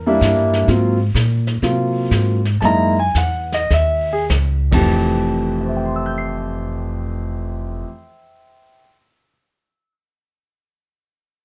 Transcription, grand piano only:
0.00 0.19 A#4 medium
0.06 0.65 G3 medium
0.06 0.65 A#3 medium
0.06 0.65 D4 medium
0.06 0.66 E4 medium
0.68 0.96 F#3 medium
0.68 0.97 A#3 medium
0.68 0.97 C4 medium
0.68 0.97 F4 medium
1.63 2.39 F#3 medium
1.63 2.39 A#3 medium
1.63 2.39 C4 soft
1.63 2.39 F4 medium
2.61 2.94 G#3 medium
2.61 2.95 A#3 medium
2.61 2.95 D#4 medium
2.61 2.95 E4 medium
2.61 2.64 A5 medium
2.65 2.98 A#5 medium
2.99 3.15 G#5 medium
3.17 3.52 F#5 medium
3.54 3.71 D#5 medium
3.73 4.10 E5 medium
4.13 4.24 G#4 medium
4.71 7.85 F2 medium
4.71 7.86 E3 medium
4.71 7.87 A3 medium
4.71 7.88 G4 medium
4.71 7.84 A5 medium
5.61 8.70 C5 soft
5.68 8.78 E5 soft
5.76 8.86 G5 soft
5.86 8.95 C6 soft
5.96 9.06 E6 soft
6.06 9.16 G6 soft
6.18 9.28 C7 soft

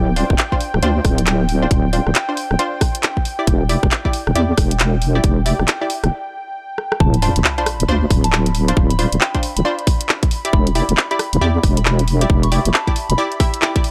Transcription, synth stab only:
0.16 0.28 D4 medium
0.16 0.28 F4 medium
0.16 0.28 C5 medium
0.52 0.59 D4 medium
0.52 0.59 F4 medium
0.52 0.59 C5 medium
0.83 1.59 D4 loud
0.83 1.59 F4 loud
0.83 1.59 C5 loud
1.62 1.75 D4 medium
1.62 1.75 F4 medium
1.62 1.75 C5 medium
1.93 2.04 D4 medium
1.93 2.04 F4 medium
1.93 2.04 C5 medium
2.29 2.36 D4 medium
2.29 2.36 F4 medium
2.29 2.36 C5 medium
2.59 3.24 D4 loud
2.59 3.24 F4 medium
2.59 3.24 C5 loud
3.39 3.52 E4 medium
3.39 3.52 G4 medium
3.39 3.52 D5 medium
3.69 3.81 E4 medium
3.69 3.81 G4 medium
3.69 3.81 D5 medium
4.05 4.12 E4 medium
4.05 4.12 G4 medium
4.05 4.12 D5 medium
4.35 5.12 E4 loud
4.35 5.12 G4 loud
4.35 5.12 D5 loud
5.15 5.28 E4 medium
5.15 5.28 G4 medium
5.15 5.28 D5 medium
5.46 5.57 E4 medium
5.46 5.57 G4 medium
5.46 5.57 D5 loud
5.81 5.88 E4 medium
5.81 5.88 G4 medium
5.81 5.88 D5 medium
7.22 7.34 D4 medium
7.22 7.34 F4 medium
7.22 7.34 C5 loud
7.58 7.65 D4 medium
7.58 7.65 F4 medium
7.58 7.65 C5 medium
7.88 8.65 D4 loud
7.88 8.65 F4 medium
7.88 8.65 C5 loud
8.68 8.81 D4 medium
8.68 8.81 F4 medium
8.68 8.81 C5 medium
8.99 9.10 D4 medium
8.99 9.10 F4 medium
8.99 9.10 C5 loud
9.35 9.41 D4 medium
9.35 9.41 F4 medium
9.35 9.41 C5 medium
9.65 10.30 D4 loud
9.65 10.30 F4 medium
9.65 10.30 C5 loud
10.45 10.58 E4 medium
10.45 10.58 G4 medium
10.45 10.58 D5 medium
10.75 10.87 E4 medium
10.75 10.87 G4 medium
10.75 10.87 D5 loud
11.11 11.18 E4 medium
11.11 11.18 G4 medium
11.11 11.18 D5 medium
11.41 12.18 E4 loud
11.41 12.18 G4 loud
11.41 12.18 D5 loud
12.21 12.34 E4 medium
12.21 12.34 G4 medium
12.21 12.34 D5 medium
12.52 12.63 E4 medium
12.52 12.63 G4 medium
12.52 12.63 D5 loud
12.87 12.94 E4 medium
12.87 12.94 G4 medium
12.87 12.94 D5 medium
13.18 13.38 E4 loud
13.18 13.38 G4 loud
13.18 13.38 D5 loud
13.40 13.60 E4 medium
13.40 13.60 G4 medium
13.40 13.60 E5 loud
13.62 13.73 E4 medium
13.62 13.73 G4 medium
13.62 13.73 D5 loud
13.76 13.88 E4 medium
13.76 13.88 G4 medium
13.76 13.88 D5 medium

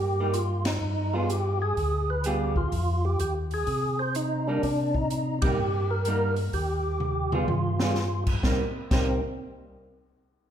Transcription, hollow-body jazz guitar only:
0.20 0.34 G3 medium
0.20 0.34 A#3 medium
0.20 0.35 D#4 medium
1.13 1.28 G3 medium
1.13 1.29 B3 medium
1.13 1.29 F4 medium
1.13 1.29 G#4 medium
2.26 2.54 G3 medium
2.26 2.54 B3 medium
2.26 2.54 F4 medium
2.26 2.54 G#4 medium
4.48 4.62 G3 medium
4.48 4.63 A#3 medium
4.48 4.63 D#4 medium
5.44 5.58 G3 medium
5.44 5.58 A#3 medium
5.44 5.58 D#4 medium
6.07 6.35 G3 medium
6.07 6.35 A#3 medium
6.07 6.35 D#4 medium
7.34 7.48 G3 medium
7.34 7.48 B3 medium
7.34 7.48 F4 medium
7.34 7.48 G#4 medium
7.82 7.96 G3 medium
7.82 7.96 B3 medium
7.82 7.96 F4 medium
7.82 7.96 G#4 medium
8.44 8.63 G3 medium
8.44 8.63 A#3 medium
8.44 8.63 D#4 medium
8.92 9.20 G3 medium
8.92 9.20 A#3 medium
8.92 9.21 D#4 medium

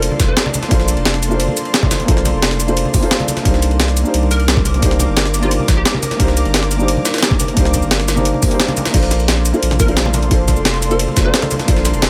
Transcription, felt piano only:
0.00 0.68 A#3 loud
0.00 0.69 D4 medium
0.00 0.71 F4 medium
0.00 0.73 A4 medium
0.00 0.74 C5 loud
0.68 1.27 A#3 medium
0.68 1.28 D4 medium
0.68 1.29 F4 medium
0.73 1.30 A4 medium
0.73 1.31 C5 loud
1.28 2.04 A#3 medium
1.28 2.05 D4 medium
1.28 2.06 F4 medium
1.33 2.07 A4 medium
1.33 2.08 C5 loud
2.05 2.65 A#3 loud
2.05 2.65 D4 medium
2.05 2.66 F4 medium
2.10 2.67 A4 medium
2.10 2.68 C5 loud
2.67 2.91 A#3 medium
2.67 2.92 D4 medium
2.67 2.92 F4 medium
2.67 2.93 A4 medium
2.67 2.93 C5 loud
2.92 2.98 A#3 medium
2.92 3.00 D4 medium
2.92 3.00 F4 medium
2.92 3.01 A4 medium
2.92 3.01 C5 medium
3.00 3.41 A#3 loud
3.00 3.42 D4 medium
3.00 3.43 F4 medium
3.04 3.44 A4 medium
3.04 3.45 C5 loud
3.42 4.01 A#3 loud
3.42 4.02 D4 medium
3.42 4.03 D#4 medium
3.47 4.04 G4 medium
3.47 4.05 C5 loud
4.02 4.78 A#3 medium
4.02 4.79 D4 medium
4.02 4.80 D#4 medium
4.07 4.81 G4 medium
4.07 4.82 C5 loud
4.79 5.38 A#3 loud
4.79 5.39 D4 medium
4.79 5.40 D#4 medium
4.84 5.41 G4 medium
4.84 5.42 C5 loud
5.39 6.15 A#3 medium
5.39 6.17 D4 medium
5.39 6.18 D#4 medium
5.44 6.18 G4 medium
5.44 6.19 C5 loud
6.17 6.75 A#3 loud
6.17 6.77 D4 medium
6.17 6.78 D#4 medium
6.21 6.78 G4 medium
6.21 6.79 C5 loud
6.77 7.52 A#3 medium
6.77 7.54 D4 medium
6.77 7.55 D#4 medium
6.81 7.56 G4 medium
6.81 7.56 C5 loud
7.54 8.13 A#3 medium
7.54 8.14 D4 medium
7.54 8.15 D#4 medium
7.58 8.15 G4 medium
7.58 8.16 C5 loud
8.15 8.39 A#3 medium
8.15 8.40 D4 medium
8.15 8.41 D#4 medium
8.15 8.41 G4 medium
8.15 8.42 C5 loud
8.41 8.46 A#3 medium
8.41 8.48 D4 medium
8.41 8.49 D#4 medium
8.41 8.49 G4 medium
8.41 8.50 C5 medium
8.48 8.89 A#3 loud
8.48 8.91 D4 medium
8.48 8.92 D#4 medium
8.53 8.93 G4 medium
8.53 8.93 C5 loud
8.91 9.50 A#3 medium
8.91 9.51 D4 medium
8.91 9.52 F4 medium
8.95 9.53 A4 medium
8.95 9.53 C5 loud
9.52 9.77 A#3 medium
9.52 9.77 D4 medium
9.52 9.78 F4 medium
9.52 9.78 A4 medium
9.52 9.79 C5 loud
9.78 9.84 A#3 medium
9.78 9.85 D4 medium
9.78 9.86 F4 medium
9.78 9.86 A4 medium
9.78 9.87 C5 medium
9.85 10.27 A#3 loud
9.85 10.28 D4 medium
9.85 10.29 F4 medium
9.90 10.30 A4 medium
9.90 10.31 C5 loud
10.28 10.88 A#3 medium
10.28 10.88 D4 medium
10.28 10.89 F4 medium
10.33 10.90 A4 medium
10.33 10.91 C5 loud
10.89 11.14 A#3 medium
10.89 11.14 D4 medium
10.89 11.15 F4 medium
10.89 11.15 A4 medium
10.89 11.16 C5 loud
11.15 11.21 A#3 medium
11.15 11.22 D4 medium
11.15 11.23 F4 medium
11.15 11.24 A4 medium
11.15 11.24 C5 medium
11.22 11.63 A#3 loud
11.22 11.65 D4 medium
11.22 11.66 F4 medium
11.27 11.67 A4 medium
11.27 11.68 C5 loud
11.65 12.10 A#3 loud
11.65 12.10 D4 medium
11.65 12.10 F4 medium
11.70 12.10 A4 medium
11.70 12.10 C5 loud

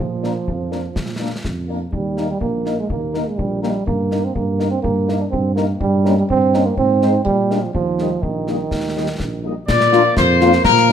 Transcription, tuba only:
0.00 0.40 A#2 soft
0.48 0.88 F2 soft
0.96 1.36 A#2 soft
1.44 1.85 F2 soft
1.93 2.33 D#2 soft
2.41 2.82 A#1 soft
2.90 3.25 D#2 soft
3.38 3.79 A#1 soft
3.87 4.27 G2 soft
4.36 4.76 G2 medium
4.84 5.24 G2 medium
5.32 5.73 G2 medium
5.82 6.22 G2 medium
6.30 6.70 G2 medium
6.78 7.19 G#2 medium
7.27 7.67 A#2 medium
7.75 8.15 D#2 soft
8.23 8.64 A#1 soft
8.71 9.12 D#2 soft
9.21 9.57 A#1 soft
9.69 10.09 A#2 medium
10.18 10.58 F2 medium
10.66 10.92 A#2 medium

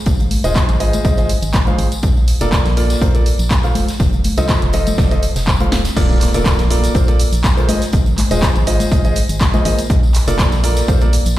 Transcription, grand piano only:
0.44 0.77 G#3 medium
0.44 0.77 F4 medium
0.44 0.77 G#4 medium
0.44 0.77 C5 medium
0.44 0.77 D#5 medium
0.80 1.02 G#3 medium
0.80 1.02 F4 medium
0.80 1.02 G#4 medium
0.80 1.02 C5 medium
0.80 1.02 D#5 medium
1.05 1.16 G#3 medium
1.05 1.16 F4 medium
1.05 1.16 G#4 medium
1.05 1.16 C5 medium
1.05 1.16 D#5 medium
1.18 1.29 G#3 medium
1.18 1.29 F4 medium
1.18 1.29 G#4 medium
1.18 1.29 C5 medium
1.18 1.29 D#5 medium
1.67 1.86 G#3 medium
1.67 1.86 F4 medium
1.67 1.86 G#4 medium
1.67 1.86 C5 medium
1.67 1.86 F5 medium
2.41 2.74 A#3 medium
2.41 2.74 F4 medium
2.41 2.74 A4 medium
2.41 2.74 A#4 medium
2.41 2.74 D5 medium
2.77 2.99 A#3 medium
2.77 2.99 F4 medium
2.77 2.99 A4 medium
2.77 2.99 A#4 medium
2.77 2.99 D5 medium
3.02 3.13 A#3 medium
3.02 3.13 F4 medium
3.02 3.13 A4 medium
3.02 3.13 A#4 medium
3.02 3.13 C5 medium
3.15 3.26 A#3 medium
3.15 3.26 F4 medium
3.15 3.26 A4 medium
3.15 3.26 A#4 medium
3.15 3.26 D5 medium
3.64 3.82 F3 medium
3.64 3.82 F4 medium
3.64 3.82 A4 medium
3.64 3.82 C5 medium
3.64 3.82 F5 medium
4.38 4.71 F3 medium
4.38 4.71 F4 medium
4.38 4.71 A4 medium
4.38 4.71 C5 medium
4.38 4.71 D#5 medium
4.74 4.95 F3 medium
4.74 4.95 F4 medium
4.74 4.95 A4 medium
4.74 4.95 C5 medium
4.74 4.95 D#5 medium
4.98 5.09 F3 medium
4.98 5.09 F4 medium
4.98 5.09 A4 medium
4.98 5.09 C5 medium
4.98 5.09 D5 medium
5.11 5.22 F3 medium
5.11 5.22 F4 medium
5.11 5.22 A4 medium
5.11 5.22 C5 medium
5.11 5.22 D#5 medium
5.61 5.79 F3 medium
5.61 5.79 F4 medium
5.61 5.79 A4 medium
5.61 5.79 C5 medium
5.61 5.79 F5 medium
5.97 6.29 A#3 medium
5.97 6.29 F4 medium
5.97 6.29 A4 medium
5.97 6.29 A#4 medium
5.97 6.29 D5 loud
6.34 6.68 A#3 medium
6.34 6.68 F4 medium
6.34 6.68 A4 medium
6.34 6.68 A#4 medium
6.34 6.68 D5 medium
6.70 6.92 A#3 medium
6.70 6.92 F4 medium
6.70 6.92 A4 medium
6.70 6.92 A#4 medium
6.70 6.92 D5 medium
6.95 7.06 A#3 medium
6.95 7.06 F4 medium
6.95 7.06 A4 medium
6.95 7.06 A#4 medium
6.95 7.06 C5 medium
7.08 7.19 A#3 medium
7.08 7.19 F4 medium
7.08 7.19 A4 medium
7.08 7.19 A#4 medium
7.08 7.19 D5 medium
7.57 7.67 G#3 medium
7.57 7.67 F4 medium
7.57 7.67 A4 medium
7.57 7.67 A#4 medium
7.57 7.67 C5 medium
7.69 7.81 G#3 medium
7.69 7.81 F4 medium
7.69 7.81 G#4 medium
7.69 7.81 C5 medium
7.69 7.81 D#5 medium
8.31 8.64 G#3 medium
8.31 8.64 F4 medium
8.31 8.64 G#4 medium
8.31 8.64 C5 medium
8.31 8.64 D#5 medium
8.67 8.89 G#3 medium
8.67 8.89 F4 medium
8.67 8.89 G#4 medium
8.67 8.89 C5 medium
8.67 8.89 D#5 medium
8.92 9.03 G#3 medium
8.92 9.03 F4 medium
8.92 9.03 G#4 medium
8.92 9.03 D#5 medium
9.05 9.16 G#3 medium
9.05 9.16 F4 medium
9.05 9.16 G#4 medium
9.05 9.16 C5 medium
9.05 9.16 D#5 medium
9.54 9.64 G#3 medium
9.54 9.64 F4 medium
9.54 9.64 G#4 medium
9.54 9.64 C5 medium
9.54 9.64 D#5 medium
9.65 9.78 A#3 medium
9.65 9.78 F4 medium
9.65 9.78 G#4 medium
9.65 9.78 C5 medium
9.65 9.78 D#5 medium
10.28 10.61 A#3 medium
10.28 10.61 F4 medium
10.28 10.61 A4 medium
10.28 10.61 A#4 medium
10.28 10.61 D5 loud
10.64 10.86 A#3 medium
10.64 10.86 F4 medium
10.64 10.86 A4 medium
10.64 10.86 A#4 medium
10.64 10.86 D5 medium
10.88 10.99 A#3 medium
10.88 10.99 F4 medium
10.88 10.99 A4 medium
10.88 10.99 A#4 medium
10.88 10.99 C5 medium
11.01 11.12 A#3 medium
11.01 11.12 F4 medium
11.01 11.12 A4 medium
11.01 11.12 A#4 medium
11.01 11.12 D5 medium

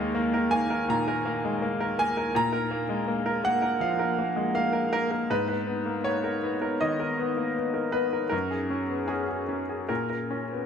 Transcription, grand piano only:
0.00 0.85 D#2 medium
0.00 0.15 G#3 medium
0.00 0.15 A#3 medium
0.00 0.34 A#4 medium
0.00 0.48 F5 medium
0.15 0.44 A#3 medium
0.34 0.63 A#4 medium
0.51 0.81 A#3 medium
0.51 0.86 G#5 medium
0.70 1.00 A#4 medium
0.89 1.18 A#2 medium
0.89 1.96 A#5 medium
1.08 1.37 A#4 medium
1.25 1.55 A#3 medium
1.45 1.63 G#3 medium
1.62 1.92 A#3 medium
1.80 2.10 A#4 medium
1.99 2.28 A#3 medium
1.99 2.33 G#5 loud
2.17 2.35 A#4 medium
2.35 3.77 A#2 medium
2.35 3.41 A#5 loud
2.53 2.82 A#4 medium
2.71 3.00 A#3 medium
2.89 3.08 G#3 soft
3.08 3.37 A#3 medium
3.26 3.55 A#4 medium
3.44 3.74 A#3 medium
3.44 3.79 F#5 medium
3.62 3.92 A#4 medium
3.80 4.10 F3 medium
3.80 4.51 F5 medium
3.99 4.29 A#4 medium
4.19 4.48 A#3 medium
4.36 4.55 G#3 soft
4.55 4.85 A#3 medium
4.55 4.90 F5 medium
4.73 4.91 A#4 medium
4.93 5.23 A#3 medium
4.93 5.10 A#4 medium
5.11 5.30 A#4 medium
5.30 6.77 G#2 medium
5.30 5.47 B4 medium
5.48 5.78 B4 medium
5.67 5.97 B3 soft
5.86 6.05 A#3 soft
6.04 6.35 B3 soft
6.04 6.76 C#5 medium
6.24 6.54 A#4 soft
6.43 6.73 B3 soft
6.62 6.92 A#4 soft
6.81 7.11 D#3 soft
6.81 7.90 D#5 medium
7.00 7.30 A#4 soft
7.19 7.49 B3 soft
7.37 7.56 A#3 soft
7.56 7.86 B3 soft
7.74 8.05 A#4 soft
7.92 8.24 B3 soft
7.92 8.29 B4 medium
8.13 8.28 A#4 soft
8.30 9.85 F#2 medium
8.30 9.04 A#4 medium
8.51 8.82 G#4 soft
8.70 9.02 C#4 soft
8.90 9.09 B3 soft
9.08 9.41 C#4 soft
9.08 9.27 G#4 medium
9.28 9.61 G#4 soft
9.49 9.81 C#4 soft
9.69 9.90 G#4 soft
9.89 10.66 A#2 soft
9.89 10.08 A#4 medium
10.10 10.43 A#4 soft
10.31 10.64 C#4 soft
10.52 10.66 B3 soft

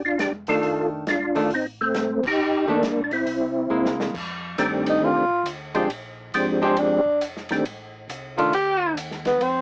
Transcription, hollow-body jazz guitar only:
0.48 1.04 D#3 medium
0.48 1.04 A3 medium
0.48 1.04 D4 medium
1.35 1.49 D#3 medium
1.35 1.49 A3 medium
1.35 1.50 D4 medium
2.67 2.81 D#3 medium
2.67 2.81 A3 medium
2.67 2.82 D4 medium
3.70 4.14 G#3 medium
3.70 4.14 A#3 soft
3.70 4.14 E4 medium
5.75 5.88 G#3 medium
5.75 5.89 D4 medium
5.75 5.89 G4 medium
6.62 6.76 G#3 medium
6.62 6.76 D4 medium
6.62 6.76 G4 medium
8.38 8.51 D#3 medium
8.38 8.52 A3 medium
8.38 8.52 D4 medium

